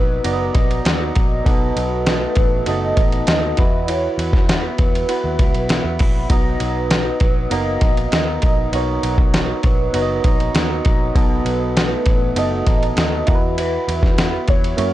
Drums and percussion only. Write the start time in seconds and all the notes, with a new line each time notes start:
0.24 ride
0.55 kick, ride
0.71 ride
0.85 snare, ride
1.15 kick, ride
1.46 kick, ride
1.77 ride
2.06 snare, ride
2.35 kick, ride
2.66 ride
2.97 kick, ride
3.12 ride
3.27 snare, ride
3.57 kick, ride
3.88 ride
4.19 ride
4.33 kick, snare
4.49 snare, ride
4.78 kick, ride
4.95 ride
5.09 ride
5.39 kick, ride
5.54 ride
5.69 snare, ride
5.99 kick, open hi-hat, ride
6.30 kick, ride
6.60 ride
6.91 snare, ride
7.20 kick, ride
7.51 ride
7.81 kick, ride
7.97 ride
8.12 snare, ride
8.42 kick, ride
8.73 ride
9.03 ride
9.18 kick
9.34 snare, ride
9.63 kick, ride
9.94 ride
10.24 kick, ride
10.40 ride
10.55 snare, ride
10.85 kick, ride
11.16 kick, ride
11.46 ride
11.77 snare, ride
12.06 kick, ride
12.36 ride
12.67 kick, ride
12.83 ride
12.97 snare, ride
13.27 kick, ride
13.58 ride
13.89 ride
14.03 kick, snare
14.18 snare, ride
14.48 kick, ride
14.64 ride
14.78 ride